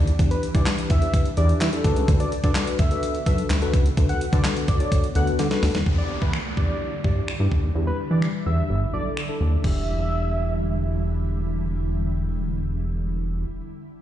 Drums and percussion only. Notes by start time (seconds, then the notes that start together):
0.07 closed hi-hat
0.19 kick, closed hi-hat
0.31 closed hi-hat
0.43 closed hi-hat
0.55 kick, closed hi-hat
0.66 snare, clap, closed hi-hat
0.78 closed hi-hat
0.90 kick, closed hi-hat
1.02 closed hi-hat
1.14 kick, closed hi-hat
1.26 closed hi-hat
1.37 closed hi-hat
1.49 closed hi-hat
1.61 snare, clap, closed hi-hat
1.73 closed hi-hat
1.84 kick, closed hi-hat
1.96 closed hi-hat
2.08 kick, closed hi-hat
2.20 closed hi-hat
2.32 closed hi-hat
2.44 kick, closed hi-hat
2.55 snare, clap, closed hi-hat
2.67 closed hi-hat
2.79 kick, closed hi-hat
2.91 closed hi-hat
3.03 closed hi-hat
3.15 closed hi-hat
3.26 kick, closed hi-hat
3.38 closed hi-hat
3.50 snare, clap, closed hi-hat
3.62 closed hi-hat
3.74 kick, closed hi-hat
3.86 closed hi-hat
3.97 kick, closed hi-hat
4.09 closed hi-hat
4.21 closed hi-hat
4.33 kick, closed hi-hat
4.44 snare, clap, closed hi-hat
4.57 closed hi-hat
4.68 kick, closed hi-hat
4.80 closed hi-hat
4.92 kick, closed hi-hat
5.04 closed hi-hat
5.15 closed hi-hat
5.27 closed hi-hat
5.39 snare, closed hi-hat
5.51 snare, closed hi-hat
5.63 snare, open hi-hat
5.75 snare, closed hi-hat
5.86 kick
6.22 kick
6.33 finger snap
6.57 kick
7.04 kick
7.28 finger snap
7.52 kick
8.22 finger snap
9.17 finger snap
9.64 kick, crash